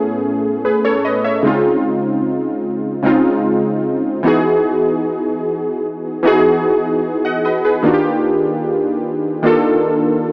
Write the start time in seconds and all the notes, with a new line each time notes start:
Already playing: A2 A3 B3 C#4 G#4
0.65 G#4 B4
0.85 A4 C#5
1.05 B4 D#5
1.24 C#5 E5
1.43 C#3 G#3 C4 D#4
1.47 F4
3.03 C#3 G#3 C4 D#4
3.07 F4
4.23 E3 B3 D#4 F#4
4.27 G#4
6.23 E3 B3 D#4 F#4
6.27 G#4
7.25 D#5 F#5
7.45 B4 D#5
7.65 G#4 B4
7.83 D#3 A#3 D4 F4
7.87 F#4
7.94 G4
9.43 D#3 A#3 D4 F4
9.47 A4